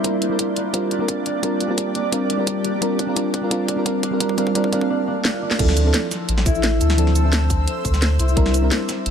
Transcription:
Already playing: ambient pad A#3, harp C4 E4 A#4 C5
0.04 fm electric piano G3 C4 D4 F4 A#4, ambient pad G4 D5, kick, closed hi-hat
0.22 harp D4, closed hi-hat
0.29 fm electric piano G3 C4 D4 F4 A#4
0.39 kick, closed hi-hat
0.56 harp D4, closed hi-hat
0.73 fm electric piano G3 C4 D4 F4 A#4, kick, closed hi-hat
0.91 harp D4, closed hi-hat
0.99 fm electric piano G3 C4 D4 F4 A#4
1.08 kick, closed hi-hat
1.26 harp D4, closed hi-hat
1.42 fm electric piano G3 C4 D4 F4 A#4, kick, closed hi-hat
1.60 harp D4, closed hi-hat
1.68 fm electric piano G3 C4 D4 F4 A#4
1.78 kick, closed hi-hat
1.95 harp D4, closed hi-hat
2.12 fm electric piano G3 C4 D4 F4 A#4, kick, closed hi-hat
2.30 harp D4, closed hi-hat
2.37 fm electric piano G3 C4 D4 F4 A#4
2.47 kick, closed hi-hat
2.64 harp D4, closed hi-hat
2.81 fm electric piano G3 C4 D4 F4 A#4, ambient pad F5, kick, closed hi-hat
2.99 harp D4, kick, closed hi-hat
3.06 fm electric piano G3 C4 D4 F4 A#4
3.16 fm electric piano G3 C4 D4 F4 A#4, kick, closed hi-hat
3.34 harp D4, kick, closed hi-hat
3.41 fm electric piano G3 C4 D4 F4 A#4
3.50 fm electric piano G3 C4 D4 F4 A#4, kick, closed hi-hat
3.68 harp D4, kick, closed hi-hat
3.76 fm electric piano G3 C4 D4 F4 A#4
3.85 fm electric piano G3 C4 D4 F4 A#4, kick, closed hi-hat
4.03 harp D4, kick, closed hi-hat
4.11 fm electric piano G3 C4 D4 F4 A#4
4.20 fm electric piano G3 C4 D4 F4 A#4, harp D4, kick, closed hi-hat
4.29 kick
4.37 fm electric piano G3 C4 D4 F4 A#4, harp D4, kick, closed hi-hat
4.47 kick
4.55 fm electric piano G3 C4 D4 F4 A#4, harp D4, kick, closed hi-hat
4.64 kick
4.72 fm electric piano G3 C4 D4 F4 A#4, harp D4, kick, closed hi-hat
4.81 kick
4.90 harp D4
5.07 harp D4
5.25 harp D4, snare
5.42 harp D4
5.51 snare
5.59 sub bass D2, fm electric piano F3 C4 D4 E4 A4, ambient pad C5 E6, kick, closed hi-hat, crash
5.68 snare
5.77 harp C4, closed hi-hat, shaker
5.84 fm electric piano F3 C4 D4 E4 A4
5.94 snare, closed hi-hat
6.11 harp C4, snare, closed hi-hat, shaker
6.29 sub bass A1, closed hi-hat
6.38 snare
6.46 sub bass A1, harp E4, kick, closed hi-hat, shaker
6.55 shaker
6.63 snare, closed hi-hat
6.81 sub bass D2, harp A4, closed hi-hat, shaker
6.90 snare, shaker
6.97 fm electric piano F3 C4 D4 E4 A4, closed hi-hat
7.07 snare
7.15 harp A4, closed hi-hat, shaker
7.23 fm electric piano F3 C4 D4 E4 A4
7.33 snare, closed hi-hat
7.50 harp C4, kick, closed hi-hat, shaker
7.67 closed hi-hat
7.85 sub bass D2, harp C5, kick, closed hi-hat, shaker
7.94 snare, shaker
8.02 snare, closed hi-hat
8.19 sub bass C2, harp E4, closed hi-hat, shaker
8.28 shaker
8.36 sub bass C2, fm electric piano G3 C4 D4 E4 A#4, ambient pad A#4 E5 D6, kick, closed hi-hat
8.46 snare
8.54 harp C4, closed hi-hat, shaker
8.61 fm electric piano G3 C4 D4 E4 A#4
8.71 snare, closed hi-hat
8.89 harp C4, snare, closed hi-hat, shaker
9.06 sub bass G1, closed hi-hat

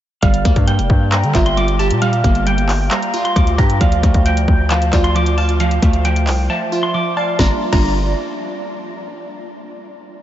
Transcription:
0.23 808-style bass G1, synth pluck G3, soft synth lead D5, clean electric guitar F5, kick, closed hi-hat
0.34 closed hi-hat
0.45 808-style bass D2, synth pluck A#3, kick, closed hi-hat
0.56 808-style bass G2, kick, closed hi-hat
0.68 synth pluck G3, clean electric guitar G5, closed hi-hat
0.79 808-style bass F1, closed hi-hat
0.90 808-style bass G2, kick
1.12 synth pluck G3, soft synth lead G5, clean electric guitar A#5, clap, closed hi-hat
1.23 808-style bass D3, closed hi-hat
1.34 808-style bass G1, synth pluck F4, soft synth lead E5, kick, clap, closed hi-hat
1.46 clean electric guitar C6, closed hi-hat
1.57 synth pluck G3, clean electric guitar D6, closed hi-hat
1.68 closed hi-hat
1.79 synth pluck G4, clean electric guitar A5, closed hi-hat
1.91 808-style bass A#2, closed hi-hat
2.02 synth pluck G3, clean electric guitar F5, closed hi-hat
2.13 closed hi-hat
2.24 808-style bass G1, synth pluck A#3, kick, closed hi-hat
2.35 closed hi-hat
2.46 synth pluck G3, clean electric guitar G5, closed hi-hat
2.58 closed hi-hat
2.69 clap, open hi-hat
2.91 synth pluck G3, soft synth lead F5, clean electric guitar A#5, clap, closed hi-hat
3.02 closed hi-hat
3.14 synth pluck F4, closed hi-hat
3.25 clean electric guitar C6, closed hi-hat
3.36 808-style bass D2, synth pluck G3, clean electric guitar D6, kick, closed hi-hat
3.47 closed hi-hat
3.58 808-style bass G2, synth pluck G4, soft synth lead G5, clean electric guitar A#5, kick, closed hi-hat
3.70 closed hi-hat
3.81 808-style bass D2, synth pluck F3, soft synth lead D5, clean electric guitar F5, kick, closed hi-hat
3.92 closed hi-hat
4.03 808-style bass D2, synth pluck A3, kick, closed hi-hat
4.14 808-style bass D2, kick, closed hi-hat
4.26 synth pluck F3, clean electric guitar G5, closed hi-hat
4.37 closed hi-hat
4.48 808-style bass D2, kick
4.70 synth pluck F3, soft synth lead F5, clean electric guitar A5, clap, closed hi-hat
4.82 closed hi-hat
4.93 808-style bass D2, synth pluck F4, soft synth lead D5, kick, clap, closed hi-hat
5.04 clean electric guitar C6, closed hi-hat
5.15 synth pluck F3, clean electric guitar D6, closed hi-hat
5.26 closed hi-hat
5.38 synth pluck F5, clean electric guitar A5, closed hi-hat
5.49 closed hi-hat
5.60 synth pluck F3, clean electric guitar F5, closed hi-hat
5.71 closed hi-hat
5.82 808-style bass D2, synth pluck A3, kick, closed hi-hat
5.93 closed hi-hat
6.05 synth pluck F3, clean electric guitar G5, closed hi-hat
6.16 closed hi-hat
6.27 808-style bass C2, clap, open hi-hat
6.49 synth pluck F3, soft synth lead E5, clean electric guitar A5
6.72 synth pluck F4
6.83 clean electric guitar C6
6.94 synth pluck F3, clean electric guitar D6
7.17 soft synth lead D5, synth pluck F5, clean electric guitar A5
7.39 808-style bass G1, synth pluck G3 A#3 D4 F4, soft synth lead D5, clean electric guitar A#5, kick, snare
7.72 808-style bass G1, synth pluck G3 A#3 D4 F4, soft synth lead D5, clean electric guitar A#5, kick, crash

